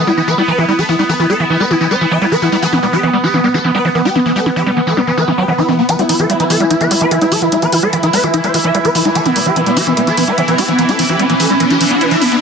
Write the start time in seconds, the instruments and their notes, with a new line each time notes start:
Already playing: synth texture B3
0.07 acid bass G3, digital synth lead E4
0.17 acid bass E3, digital synth lead E4
0.28 acid bass E3, digital synth lead B4
0.38 acid bass G3, digital synth lead E4
0.48 acid bass E3, digital synth lead B4
0.58 acid bass E3, digital synth lead E4
0.68 acid bass G3, digital synth lead E4
0.79 acid bass E3, digital synth lead A4
0.89 acid bass E3, digital synth lead E4
0.99 acid bass G3, digital synth lead E4
1.09 acid bass E3, digital synth lead B4
1.19 acid bass E3, digital synth lead E4
1.30 acid bass G3, digital synth lead A4
1.40 acid bass E3, digital synth lead E4
1.50 acid bass E3, digital synth lead E4
1.60 acid bass G3, digital synth lead B4
1.71 acid bass E3, digital synth lead E4
1.81 acid bass E3, digital synth lead E4
1.91 acid bass G3, digital synth lead C5
2.01 acid bass E3, digital synth lead E4
2.11 acid bass E3, digital synth lead E5
2.22 acid bass G3, digital synth lead E4
2.32 acid bass E3, digital synth lead B4
2.42 acid bass E3, digital synth lead E4
2.52 acid bass G3, digital synth lead E4
2.62 acid bass E3, digital synth lead A4
2.73 acid bass E3, digital synth lead B3
2.83 acid bass G3, digital synth lead B3
2.93 acid bass E3, digital synth lead G4
3.03 acid bass E3, digital synth lead B3
3.13 acid bass G3, digital synth lead B3
3.24 acid bass E3, digital synth lead G4
3.34 acid bass E3, digital synth lead B3
3.44 acid bass G3, digital synth lead B3
3.54 acid bass E3, digital synth lead A4
3.64 acid bass E3, digital synth lead B3
3.75 acid bass G3, digital synth lead B4
3.85 acid bass E3, digital synth lead B3
3.95 acid bass E3, digital synth lead B3
4.05 acid bass G3, digital synth lead G4
4.15 acid bass E3, digital synth lead B3
4.26 acid bass E3, digital synth lead B3
4.36 acid bass G3, digital synth lead A4
4.46 acid bass E3, digital synth lead B3
4.56 acid bass E3, digital synth lead G4
4.66 acid bass G3, digital synth lead B3
4.77 acid bass E3, digital synth lead B3
4.87 acid bass E3, digital synth lead A4
4.97 acid bass G3, digital synth lead B3
5.07 acid bass E3, digital synth lead B3
5.17 acid bass E3, digital synth lead B4
5.28 acid bass E3, digital synth lead B3
5.38 acid bass F#3, digital synth lead G4
5.48 acid bass E3, digital synth lead B3
5.58 acid bass E3, digital synth lead E4
5.68 acid bass E3, digital synth lead B3
5.79 acid bass G3, digital synth lead B3
5.89 synth texture E3 E4, acid bass E3, digital synth lead B4, closed hi-hat, riser
5.99 acid bass G3, digital synth lead E4, closed hi-hat
6.09 acid bass E3, digital synth lead E4, open hi-hat
6.19 acid bass E3, digital synth lead A4, closed hi-hat
6.30 acid bass G3, digital synth lead E4, closed hi-hat
6.40 acid bass E3, digital synth lead E4, closed hi-hat
6.50 acid bass E3, digital synth lead A4, open hi-hat
6.60 acid bass G3, digital synth lead E4, closed hi-hat
6.70 acid bass E3, digital synth lead E4, closed hi-hat
6.81 acid bass E3, digital synth lead B4, closed hi-hat
6.91 acid bass G3, digital synth lead E4, open hi-hat
7.01 acid bass E3, digital synth lead B4, closed hi-hat
7.11 acid bass E3, digital synth lead E4, closed hi-hat
7.21 acid bass G3, digital synth lead E4, closed hi-hat
7.32 acid bass E3, digital synth lead A4, open hi-hat
7.42 acid bass E3, digital synth lead E4
7.52 acid bass G3, digital synth lead E4, closed hi-hat
7.62 acid bass E3, digital synth lead B4, closed hi-hat
7.72 acid bass E3, digital synth lead E4, open hi-hat
7.83 acid bass G3, digital synth lead A4, closed hi-hat
7.93 acid bass E3, digital synth lead E4, closed hi-hat
8.03 acid bass E3, digital synth lead E4, closed hi-hat
8.13 acid bass G3, digital synth lead B4, open hi-hat
8.24 acid bass E3, digital synth lead E4, closed hi-hat
8.34 acid bass E3, digital synth lead E4, closed hi-hat
8.44 acid bass G3, digital synth lead C5, closed hi-hat
8.54 acid bass E3, digital synth lead E4, open hi-hat
8.64 acid bass E3, digital synth lead E5, closed hi-hat
8.75 acid bass G3, digital synth lead E4, closed hi-hat
8.85 acid bass E3, digital synth lead B4, closed hi-hat
8.95 acid bass E3, digital synth lead E4, open hi-hat
9.05 acid bass G3, digital synth lead E4, closed hi-hat
9.15 acid bass E3, digital synth lead A4, closed hi-hat
9.26 acid bass E3, digital synth lead B3, closed hi-hat
9.36 acid bass G3, digital synth lead B3, open hi-hat
9.46 acid bass E3, digital synth lead G4, closed hi-hat
9.56 acid bass E3, digital synth lead B3, closed hi-hat
9.66 acid bass G3, digital synth lead B3, closed hi-hat
9.77 acid bass E3, digital synth lead G4, open hi-hat
9.87 acid bass E3, digital synth lead B3, closed hi-hat
9.97 acid bass G3, digital synth lead B3, closed hi-hat
10.07 acid bass E3, digital synth lead A4, closed hi-hat
10.17 acid bass E3, digital synth lead B3, open hi-hat
10.28 acid bass G3, digital synth lead B4, closed hi-hat
10.38 acid bass E3, digital synth lead B3, closed hi-hat
10.48 acid bass E3, digital synth lead B3, closed hi-hat
10.58 acid bass G3, digital synth lead G4, open hi-hat
10.68 acid bass E3, digital synth lead B3, closed hi-hat
10.79 acid bass E3, digital synth lead B3, closed hi-hat
10.89 acid bass G3, digital synth lead A4, closed hi-hat
10.99 acid bass E3, digital synth lead B3, open hi-hat
11.09 acid bass E3, digital synth lead G4, closed hi-hat
11.19 acid bass G3, digital synth lead B3, closed hi-hat
11.30 acid bass E3, digital synth lead B3, closed hi-hat
11.40 acid bass E3, digital synth lead A4, open hi-hat
11.50 acid bass G3, digital synth lead B3, closed hi-hat
11.60 acid bass E3, digital synth lead B3, closed hi-hat
11.70 acid bass E3, digital synth lead G4, closed hi-hat
11.81 acid bass E3, digital synth lead B3, open hi-hat
11.91 acid bass B3, digital synth lead F#4, closed hi-hat
12.01 digital synth lead B3, acid bass E4, closed hi-hat
12.11 acid bass E3, digital synth lead E4, closed hi-hat
12.21 digital synth lead B3, acid bass E4, open hi-hat
12.32 digital synth lead B3, acid bass B3